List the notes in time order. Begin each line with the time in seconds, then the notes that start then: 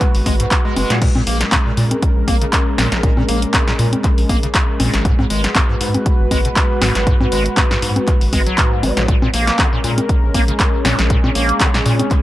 Already playing: G#3 F#4 B4
0.01 kick, clap, closed hi-hat
0.15 G#1, open hi-hat
0.26 G#1 G#3, kick, open hi-hat, high conga
0.40 G#2, closed hi-hat
0.51 kick, clap, closed hi-hat
0.65 G#3
0.76 F#1 G#3, open hi-hat, high conga
0.90 A#2 B3, snare, closed hi-hat
1.02 A#2 C#4 A#4, kick, closed hi-hat, crash
1.15 A#2, high conga
1.27 A#1 A#3, open hi-hat
1.41 snare, closed hi-hat
1.52 A#2, kick, clap, closed hi-hat, high conga
1.66 A#2
1.77 A#2, open hi-hat
1.91 closed hi-hat, high conga
2.03 kick, closed hi-hat
2.16 A#1
2.28 A#1 A#3, kick, open hi-hat, high conga
2.42 C#3, closed hi-hat
2.53 kick, clap, closed hi-hat
2.78 A#1 A#2, snare, open hi-hat, high conga
2.92 A#1, snare, closed hi-hat
3.03 A#2, kick, closed hi-hat
3.17 A#2, high conga
3.29 A#1 A#3, open hi-hat
3.42 closed hi-hat
3.54 A#2, kick, clap, closed hi-hat, high conga
3.68 A#2, snare
3.79 A#2, open hi-hat
3.93 closed hi-hat, high conga
4.04 kick, clap, closed hi-hat
4.18 A#1, open hi-hat
4.29 A#1 A#3, kick, open hi-hat, high conga
4.43 C#3, closed hi-hat
4.55 kick, clap, closed hi-hat
4.80 A#1 A#2, open hi-hat, high conga
4.94 G#1 A#1, snare, closed hi-hat
5.05 G#2 F#4 B4, kick, closed hi-hat
5.19 G#2, high conga
5.30 G#1 G#3, open hi-hat
5.44 snare, closed hi-hat
5.55 G#2, kick, clap, closed hi-hat, high conga
5.69 G#2
5.81 G#2, open hi-hat
5.94 closed hi-hat, high conga
6.06 kick, closed hi-hat
6.20 G#1
6.31 G#1 G#3, kick, open hi-hat, high conga
6.45 B2, closed hi-hat
6.56 kick, clap, closed hi-hat
6.82 G#1 G#2, snare, open hi-hat, high conga
6.95 G#1, snare, closed hi-hat
7.07 G#2, kick, closed hi-hat
7.21 G#2, high conga
7.32 G#1 G#3, open hi-hat
7.46 closed hi-hat
7.57 G#2, kick, clap, closed hi-hat, high conga
7.71 G#2, snare
7.82 G#2, open hi-hat
7.96 closed hi-hat, high conga
8.08 kick, clap, closed hi-hat
8.21 G#1, open hi-hat
8.33 G#1 G#3, kick, open hi-hat, high conga
8.47 F#3, closed hi-hat
8.58 G#2, kick, clap, closed hi-hat
8.83 G#1 G#3, open hi-hat, high conga
8.97 A#1 G#2, snare, closed hi-hat
9.08 A#2 G#3 C#4 A#4, kick, closed hi-hat
9.22 A#2, high conga
9.34 A#1 A#3, open hi-hat
9.47 snare, closed hi-hat
9.59 C#3, kick, clap, closed hi-hat, high conga
9.73 A#2
9.84 A#2, open hi-hat
9.98 closed hi-hat, high conga
10.09 kick, closed hi-hat
10.23 A#1
10.34 A#1 A#3, kick, open hi-hat, high conga
10.48 C#3, closed hi-hat
10.60 kick, clap, closed hi-hat
10.85 A#1 A#2, snare, open hi-hat, high conga
10.99 A#1, snare, closed hi-hat
11.10 A#2 G#4, kick, closed hi-hat
11.24 A#2, high conga
11.35 A#1 A#3, open hi-hat
11.49 closed hi-hat
11.60 C#3, kick, clap, closed hi-hat, high conga
11.74 A#2, snare
11.86 A#2, open hi-hat
11.99 closed hi-hat, high conga
12.11 kick, clap, closed hi-hat